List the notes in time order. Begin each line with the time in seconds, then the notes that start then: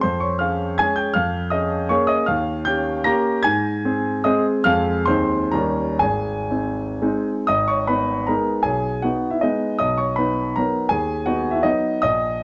0.01 F2 C5 C6
0.20 C#5 C#6
0.39 C#4 G#4 F5 F6
0.78 G#3 C#4 G#4 G#5 G#6
0.96 G5 G6
1.14 F2 F5 F6
1.50 C#4 G#4 D#5 D#6
1.89 A#3 C#4 G#4 C#5 C#6
2.07 D#5 D#6
2.26 D#2 F5 F6
2.65 C#4 G4 G5 G6
3.04 A#3 C#4 G4 A#5 A#6
3.43 G#2 G#5 G#6
3.85 C4 G#4
4.24 G#3 C4 G#4 D#5 D#6
4.64 F2 G#3 C4 G#4 F5 F6
5.06 D#2 G#3 C4 D#4 C5 C6
5.52 D#2 G3 C#4 D#4 A#4 A#5
5.99 G#1 G#4 G#5
6.51 C4 D#4
7.02 G#3 C4 D#4
7.47 G#1 D#5 D#6
7.68 C#5 C#6
7.87 B3 D#4 B4 B5
8.27 G#3 B3 D#4 A#4 A#5
8.63 B1 G#4 G#5
9.02 B3 D#4 F#4 F#5
9.30 E4 E5
9.41 G#3 B3 D#4 D#5
9.79 B1 D#5 D#6
9.98 C#5 C#6
10.16 B3 D#4 B4 B5
10.56 F#3 B3 D#4 A#4 A#5
10.89 D#2 G#4 G#5
11.26 B3 D#4 F#4 F#5
11.51 E4 E5
11.63 F#3 B3 D#4 D#5
12.02 A#1 D#5 D#6